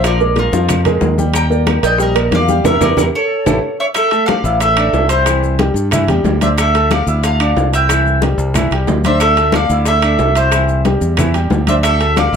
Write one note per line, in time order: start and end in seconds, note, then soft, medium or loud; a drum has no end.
0.00 0.48 A#1 medium
0.00 high bongo medium
0.04 0.18 F3 medium
0.04 0.18 F4 medium
0.04 0.36 A#4 medium
0.04 0.35 D5 medium
0.04 0.18 F5 medium
0.04 high conga soft
0.04 high timbale medium
0.04 claves medium
0.04 maracas medium
0.20 0.47 G#3 medium
0.20 0.48 G#4 medium
0.20 0.47 A#4 medium
0.20 high conga soft
0.20 maracas soft
0.36 1.15 F4 medium
0.36 1.15 A#4 medium
0.36 high bongo medium
0.36 high conga medium
0.36 high timbale medium
0.36 maracas soft
0.52 0.98 F2 medium
0.52 0.79 F3 medium
0.52 0.80 F4 medium
0.52 0.80 F5 medium
0.52 high bongo soft
0.52 high conga medium
0.52 maracas medium
0.69 high bongo medium
0.69 high conga soft
0.69 low conga medium
0.69 high timbale medium
0.69 claves medium
0.69 maracas medium
0.85 1.12 G#3 medium
0.85 1.13 G#4 medium
0.85 1.13 A#4 medium
0.85 high bongo soft
0.85 high conga soft
0.85 low conga medium
0.85 high timbale medium
0.85 maracas soft
1.01 1.77 D#2 medium
1.01 high bongo medium
1.01 low bongo medium
1.01 high conga medium
1.01 low timbale medium
1.01 maracas soft
1.18 1.45 G3 medium
1.18 1.45 G4 medium
1.18 1.45 G5 medium
1.18 high bongo soft
1.18 high conga medium
1.18 maracas medium
1.34 1.80 G5 medium
1.34 1.83 A#5 medium
1.34 high bongo medium
1.34 high conga soft
1.34 high timbale medium
1.34 claves medium
1.34 maracas medium
1.50 1.77 A#3 medium
1.50 1.77 A#4 medium
1.50 1.78 D5 medium
1.50 high conga soft
1.50 maracas soft
1.67 high bongo medium
1.67 high conga loud
1.67 high timbale medium
1.67 claves medium
1.67 maracas soft
1.83 2.29 A#1 loud
1.83 1.97 A#3 medium
1.83 1.97 A#4 medium
1.83 1.97 D5 medium
1.83 1.99 D#5 medium
1.83 1.99 G5 loud
1.83 high timbale medium
1.83 maracas medium
1.98 2.13 G3 medium
1.98 2.13 G4 medium
1.98 2.31 A#4 medium
1.98 2.34 D#5 medium
1.98 2.13 G5 medium
1.98 high bongo medium
1.98 high conga soft
1.98 maracas medium
2.15 2.42 A#3 medium
2.15 2.42 A#4 medium
2.15 2.43 D5 medium
2.15 high conga soft
2.15 high timbale loud
2.15 claves medium
2.15 maracas soft
2.31 2.62 E2 medium
2.31 2.64 F5 loud
2.31 high bongo medium
2.31 low bongo medium
2.31 high conga medium
2.31 high timbale medium
2.31 low timbale medium
2.31 maracas soft
2.35 2.64 D5 medium
2.48 2.62 G3 medium
2.48 2.62 G4 medium
2.48 2.62 G5 medium
2.48 high conga medium
2.48 maracas medium
2.64 2.77 E2 loud
2.64 2.75 E4 medium
2.64 2.76 G4 loud
2.64 2.76 A#4 loud
2.64 2.81 A#4 medium
2.64 2.81 E5 medium
2.64 low bongo medium
2.64 low conga loud
2.64 high timbale loud
2.64 claves medium
2.64 maracas medium
2.81 2.93 E2 loud
2.81 2.92 E4 medium
2.81 2.92 G4 medium
2.81 2.92 A#4 medium
2.81 2.97 A#4 medium
2.81 2.97 D5 medium
2.81 low bongo medium
2.81 low conga loud
2.81 high timbale loud
2.81 claves loud
2.81 maracas loud
2.97 3.09 E2 medium
2.97 3.08 E4 medium
2.97 3.08 G4 medium
2.97 3.08 A#4 loud
2.97 3.03 A#4 medium
2.97 3.03 D5 medium
2.97 low bongo loud
2.97 low conga loud
2.97 high timbale medium
2.97 claves loud
2.97 maracas loud
3.15 3.76 A4 medium
3.15 3.76 C#5 medium
3.46 3.59 A1 loud
3.46 3.57 E4 loud
3.46 3.57 G4 medium
3.46 3.57 A4 loud
3.46 low bongo medium
3.46 low conga medium
3.46 high timbale loud
3.46 claves medium
3.46 maracas medium
3.80 3.85 C#5 medium
3.80 3.85 E5 medium
3.94 4.26 A4 medium
3.94 4.25 E5 loud
3.94 high bongo medium
3.94 high conga soft
3.94 high timbale medium
3.94 claves medium
3.94 maracas medium
4.11 4.39 A3 medium
4.11 4.39 A4 medium
4.11 4.39 A5 medium
4.11 high bongo soft
4.11 high conga soft
4.11 high timbale medium
4.11 maracas soft
4.26 4.59 D5 medium
4.26 4.60 F5 loud
4.26 high bongo medium
4.26 high conga loud
4.26 high timbale medium
4.26 low timbale medium
4.26 claves medium
4.26 maracas soft
4.44 4.90 A1 loud
4.44 4.71 E4 medium
4.44 4.72 E5 medium
4.44 4.72 E6 medium
4.44 high bongo soft
4.44 high conga soft
4.44 maracas medium
4.60 5.08 A4 medium
4.60 5.06 E5 medium
4.60 high bongo medium
4.60 high conga soft
4.60 high timbale medium
4.60 maracas medium
4.77 5.05 D4 medium
4.77 5.05 D5 medium
4.77 5.05 D6 medium
4.77 high bongo soft
4.77 high conga soft
4.77 high timbale loud
4.77 claves medium
4.77 maracas soft
4.93 5.70 C2 medium
4.93 high bongo soft
4.93 low bongo medium
4.93 high conga soft
4.93 low timbale medium
4.93 maracas soft
5.09 5.24 E4 medium
5.09 5.57 G4 medium
5.09 5.55 C5 medium
5.09 5.24 E5 medium
5.09 5.25 E6 medium
5.09 high conga soft
5.09 high timbale medium
5.09 maracas medium
5.26 5.53 E3 medium
5.26 5.53 E4 medium
5.26 5.54 E5 medium
5.26 high bongo medium
5.26 high conga soft
5.26 high timbale medium
5.26 claves medium
5.26 maracas medium
5.43 high bongo soft
5.43 high conga soft
5.43 maracas soft
5.59 5.86 G3 medium
5.59 5.86 G4 medium
5.59 5.87 G5 medium
5.59 high bongo medium
5.59 high conga loud
5.59 high timbale medium
5.59 low timbale medium
5.59 maracas soft
5.74 6.06 G2 medium
5.74 high bongo soft
5.74 high conga soft
5.74 maracas medium
5.91 6.05 E3 medium
5.91 6.06 E4 medium
5.91 6.06 E5 medium
5.91 high bongo medium
5.91 high conga soft
5.91 low conga medium
5.91 high timbale medium
5.91 claves medium
5.91 maracas medium
6.08 6.23 E2 medium
6.08 6.36 G3 medium
6.08 6.36 G4 medium
6.08 6.36 G5 medium
6.08 high bongo soft
6.08 high conga soft
6.08 low conga medium
6.08 high timbale medium
6.08 maracas soft
6.24 7.01 D2 medium
6.24 high bongo soft
6.24 low bongo medium
6.24 high conga medium
6.24 low timbale medium
6.24 maracas soft
6.41 6.68 D4 medium
6.41 6.48 C5 medium
6.41 6.68 D5 medium
6.41 6.47 E5 medium
6.41 6.69 D6 medium
6.41 high conga medium
6.41 high timbale medium
6.41 maracas medium
6.58 6.89 A4 medium
6.58 6.88 E5 medium
6.58 high bongo medium
6.58 high conga soft
6.58 high timbale medium
6.58 claves medium
6.58 maracas medium
6.75 7.02 A3 medium
6.75 7.02 A4 medium
6.75 7.02 A5 medium
6.75 high bongo soft
6.75 high conga soft
6.75 high timbale medium
6.75 maracas soft
6.91 7.22 D5 medium
6.91 7.23 F5 medium
6.91 high bongo medium
6.91 high conga loud
6.91 high timbale medium
6.91 low timbale soft
6.91 claves medium
6.91 maracas soft
7.07 7.53 D2 loud
7.07 7.35 E4 medium
7.07 7.35 E5 medium
7.07 7.35 E6 medium
7.07 high bongo soft
7.07 high conga soft
7.07 maracas medium
7.24 7.70 F5 medium
7.24 7.70 A5 medium
7.24 high bongo medium
7.24 high conga soft
7.24 high timbale medium
7.24 maracas medium
7.40 7.67 D4 medium
7.40 7.68 D5 medium
7.40 7.68 D6 medium
7.40 high bongo soft
7.40 high conga soft
7.40 high timbale medium
7.40 claves medium
7.40 maracas soft
7.56 8.33 C2 loud
7.56 high bongo soft
7.56 low bongo medium
7.56 high conga soft
7.56 low timbale medium
7.56 maracas soft
7.73 7.87 E4 medium
7.73 7.87 E5 medium
7.73 8.19 E5 medium
7.73 8.20 G5 medium
7.73 7.87 E6 medium
7.73 high conga soft
7.73 high timbale medium
7.73 maracas medium
7.89 8.17 E3 medium
7.89 8.17 E4 medium
7.89 8.17 E5 medium
7.89 high bongo medium
7.89 high conga soft
7.89 high timbale medium
7.89 claves medium
7.89 maracas medium
8.06 high bongo soft
8.06 high conga soft
8.06 maracas soft
8.22 8.49 G3 medium
8.22 8.50 G4 medium
8.22 8.50 G5 medium
8.22 high bongo medium
8.22 high conga loud
8.22 high timbale medium
8.22 low timbale medium
8.22 maracas soft
8.38 8.69 C2 medium
8.38 high bongo soft
8.38 high conga soft
8.38 maracas medium
8.54 8.69 E3 medium
8.54 8.69 E4 medium
8.54 8.69 E5 medium
8.54 high bongo medium
8.54 high conga soft
8.54 low conga medium
8.54 high timbale medium
8.54 claves medium
8.54 maracas medium
8.71 8.87 C2 medium
8.71 8.99 G3 medium
8.71 8.99 G4 medium
8.71 8.99 G5 medium
8.71 high bongo soft
8.71 high conga soft
8.71 high timbale medium
8.71 maracas soft
8.87 9.64 D2 medium
8.87 high bongo soft
8.87 low bongo medium
8.87 high conga medium
8.87 low timbale medium
8.87 maracas soft
9.04 9.32 D4 medium
9.04 9.20 C5 medium
9.04 9.32 D5 medium
9.04 9.19 E5 medium
9.04 9.32 D6 medium
9.04 high conga medium
9.04 high timbale medium
9.04 maracas medium
9.20 9.51 A4 medium
9.20 9.54 E5 loud
9.20 high bongo medium
9.20 high timbale medium
9.20 claves medium
9.20 maracas medium
9.37 9.65 A3 medium
9.37 9.65 A4 medium
9.37 9.65 A5 medium
9.37 high bongo soft
9.37 high conga soft
9.37 high timbale medium
9.37 maracas soft
9.52 9.85 D5 medium
9.52 9.85 F5 loud
9.52 high bongo medium
9.52 high conga loud
9.52 high timbale medium
9.52 low timbale medium
9.52 claves medium
9.52 maracas soft
9.69 10.16 D2 medium
9.69 9.98 E4 medium
9.69 9.98 E5 medium
9.69 9.98 E6 medium
9.69 high bongo soft
9.69 high conga soft
9.69 maracas medium
9.85 10.33 A4 medium
9.85 10.38 E5 medium
9.85 high bongo medium
9.85 high conga soft
9.85 high timbale medium
9.85 maracas medium
10.02 10.30 D4 medium
10.02 10.31 D5 medium
10.02 10.31 D6 medium
10.02 high bongo soft
10.02 high conga soft
10.02 high timbale medium
10.02 claves medium
10.02 maracas soft
10.19 10.96 C2 loud
10.19 high bongo soft
10.19 low bongo medium
10.19 high conga soft
10.19 low timbale medium
10.19 maracas soft
10.35 10.49 E4 medium
10.35 10.82 G4 medium
10.35 10.82 C5 medium
10.35 10.50 E5 medium
10.35 10.50 E6 medium
10.35 high conga soft
10.35 high timbale medium
10.35 maracas medium
10.52 10.80 E3 medium
10.52 10.80 E4 medium
10.52 10.80 E5 medium
10.52 high bongo medium
10.52 high conga soft
10.52 high timbale medium
10.52 claves medium
10.52 maracas medium
10.68 high bongo soft
10.68 high conga soft
10.68 maracas soft
10.85 11.13 G3 medium
10.85 11.13 G4 medium
10.85 11.13 G5 medium
10.85 high bongo medium
10.85 high conga loud
10.85 high timbale medium
10.85 low timbale soft
10.85 maracas soft
11.01 11.47 E2 loud
11.01 high bongo soft
11.01 maracas medium
11.17 11.32 E3 medium
11.17 11.32 E4 medium
11.17 11.32 E5 medium
11.17 high bongo medium
11.17 high conga soft
11.17 low conga medium
11.17 high timbale medium
11.17 claves medium
11.17 maracas medium
11.34 11.61 G3 medium
11.34 11.62 G4 medium
11.34 11.62 G5 medium
11.34 high bongo soft
11.34 high conga soft
11.34 high timbale medium
11.34 maracas soft
11.50 12.27 D2 loud
11.50 high bongo soft
11.50 low bongo medium
11.50 high conga medium
11.50 low timbale medium
11.50 maracas soft
11.67 11.94 D4 medium
11.67 11.74 C5 medium
11.67 11.95 D5 medium
11.67 11.74 E5 medium
11.67 11.94 D6 medium
11.67 high conga medium
11.67 high timbale medium
11.67 maracas medium
11.83 12.15 A4 medium
11.83 12.14 E5 loud
11.83 high bongo medium
11.83 high conga soft
11.83 high timbale medium
11.83 claves medium
11.83 maracas medium
12.00 12.27 A3 medium
12.00 12.27 A4 medium
12.00 12.27 A5 medium
12.00 high bongo soft
12.00 high conga soft
12.00 high timbale medium
12.00 maracas soft
12.16 12.36 D5 medium
12.16 12.36 F5 loud
12.16 high bongo medium
12.16 high conga loud
12.16 high timbale medium
12.16 low timbale medium
12.16 claves medium
12.16 maracas soft
12.33 12.36 A1 medium
12.33 12.36 E4 medium
12.33 high bongo soft